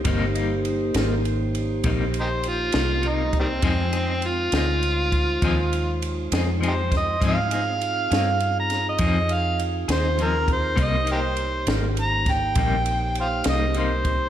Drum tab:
RD |xxxxxxxxxxxx|xxxxxxxxxxxx|xxxxxxxxxxxx|xxxxxxxxxxxx|
SD |---o-----o--|---o-----o-o|---o-o---o--|---o-o---o--|
BD |o-----o----o|o----oo----o|o-----o----o|o----oo----o|